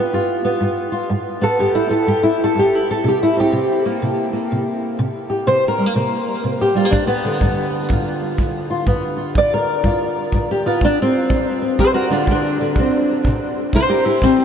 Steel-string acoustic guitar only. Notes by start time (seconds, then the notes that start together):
Already playing: G2 F4 G4
0.00 B3
0.13 G2 F4
0.45 B3
0.60 G2
0.92 F4
1.10 G2
1.41 B3 A4
1.59 G2 G4
1.75 E4
1.90 B3 A4
2.07 G2 G4
2.23 E4
2.44 A4
2.55 G2
2.59 G4
2.75 E4
2.91 A4
3.04 C3
3.08 G4
3.23 E4
3.37 C4 G4
3.52 C3
3.86 A#3
4.02 C3
4.33 A#3
4.52 C3
4.99 C3
5.30 G4
5.47 C3 C5
5.68 A#4
5.78 G3
5.86 A#3
5.95 C3 A#3
6.44 C3
6.61 G4
6.75 G3 F4
6.85 A#3
6.91 G2 D4
7.07 B3
7.25 D3
7.41 G2
7.91 G2 F4
8.38 G2
8.70 F4
8.86 G2 B3 F4
9.17 F4
9.35 G2 D5
9.54 A#4
9.83 G2 F4
10.34 G2
10.51 G4
10.66 B3 F4
10.82 D2 D4
11.02 C4
11.30 D2
11.62 C4
11.79 D2 A4 C5
11.94 F#4 A#4
12.10 D3 D4 F4
12.27 D2 D4
12.61 D3
12.78 C3 C4
13.27 C3
13.75 C3 E4 C5
13.89 G4 A#4
14.05 E4 G4
14.23 C3 C4